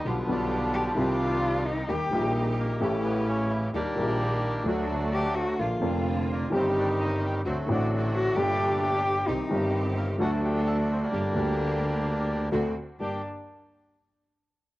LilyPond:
<<
  \new Staff \with { instrumentName = "Cello" } { \time 4/4 \key g \minor \tempo 4 = 130 r4. g'8 f'4. ees'8 | g'4~ g'16 r2 r8. | r2. g'8 fis'8 | f'4~ f'16 r2 r8. |
r4. fis'8 g'4 g'4 | ees'4~ ees'16 r2 r8. | r1 | d'8 r2. r8 | }
  \new Staff \with { instrumentName = "String section" } { \time 4/4 \key g \minor <b f' g'>8 <b f' g'>4. <ees c' g'>2 | <bes ees' g'>8 <bes ees' g'>4. <a cis' g'>2 | <bes ees' g'>8 <ees bes g'>4. <a d' fis'>2 | <bes d' f'>8 <bes d' f'>4. <c' ees' g'>2 |
<c' d' fis'>8 <c' d' fis'>4. <g d' g'>2 | <c' ees' g'>8 <c' ees' g'>4. <a d' fis'>2 | <bes d' g'>8 <bes d' g'>2~ <bes d' g'>8 <c' d' fis'>8 r8 | <bes d' g'>8 r2. r8 | }
  \new Staff \with { instrumentName = "Bandoneon" } { \time 4/4 \key g \minor b8 d'2. r8 | r4. bes8 a8 b8 cis'8 e'8 | d'2 d'4. r8 | r4. bes8 c'8 d'8 ees'8 g'8 |
c'8 d'2. r8 | r4. bes8 fis'8 g'8 a'8 c'16 d'16~ | d'2. r4 | g'8 r2. r8 | }
  \new Staff \with { instrumentName = "Bandoneon" } { \clef bass \time 4/4 \key g \minor <d f>8 <f g>2. r8 | r2 <cis e>2 | <g bes>2 <fis a>2 | r2 <ees g>2 |
<fis a>8 <fis a>2. r8 | r2 <a d'>4.~ <a d'>16 <g bes>16~ | <g bes>2. r4 | r1 | }
  \new Staff \with { instrumentName = "Upright piano" } { \clef bass \time 4/4 \key g \minor <b,, b, d g b f'>8 <b,, b, d g b f'>4. <c, c ees g c' g'>2 | <ees, ees g bes g'>8 <bes,, bes, ees g bes g'>4. <a,, a, e a cis' g'>2 | <ees, ees g bes g'>8 <bes,, bes, ees g bes g'>4. <d, d fis a fis'>2 | <bes,, bes, d f bes f'>8 <f,, f, d f bes f'>4. <g,, g, ees g c' g'>2 |
<d, d a c' fis'>8 <a,, a, d a c' fis'>4. <g,, g, bes, d g g'>2 | <c, c ees g c' g'>8 <g,, g, ees g c' g'>4. <d, d fis a fis'>2 | <g,, g, d g bes g'>8 <d, d g bes g'>2~ <d, d g bes g'>8 <d, d a c' fis'>8 r8 | <g, bes d' g'>8 r2. r8 | }
  \new Staff \with { instrumentName = "Double bass" } { \clef bass \time 4/4 \key g \minor b,,8 b,,4. c,2 | ees,8 bes,,4. a,,2 | ees,8 bes,,4. d,2 | bes,,8 f,,4. g,,2 |
d,8 a,,4. g,,2 | c,8 g,,4. d,2 | g,,8 d,2~ d,8 d,8 r8 | g,,8 r2. r8 | }
>>